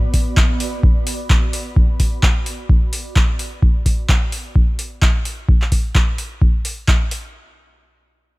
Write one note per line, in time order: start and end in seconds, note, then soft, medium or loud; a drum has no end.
0.00 3.63 B3 medium
0.00 3.63 F#4 medium
0.00 3.63 D5 medium
0.00 3.63 B5 medium
0.14 kick medium
0.14 open hi-hat medium
0.37 kick loud
0.37 clap loud
0.60 open hi-hat medium
0.83 kick loud
1.07 open hi-hat loud
1.30 kick loud
1.30 clap loud
1.53 open hi-hat medium
1.76 kick loud
2.00 kick medium
2.00 open hi-hat medium
2.23 kick loud
2.23 clap loud
2.46 open hi-hat medium
2.69 kick loud
2.93 open hi-hat loud
3.16 kick loud
3.16 clap loud
3.39 open hi-hat medium
3.63 kick loud
3.86 kick medium
3.86 open hi-hat medium
4.09 kick loud
4.09 clap loud
4.32 open hi-hat medium
4.56 kick loud
4.79 open hi-hat medium
5.02 kick loud
5.02 clap loud
5.25 open hi-hat medium
5.49 kick loud
5.62 clap soft
5.72 kick medium
5.72 open hi-hat medium
5.95 kick loud
5.95 clap loud
6.18 open hi-hat medium
6.42 kick loud
6.65 open hi-hat medium
6.88 kick loud
6.88 clap loud
7.11 open hi-hat medium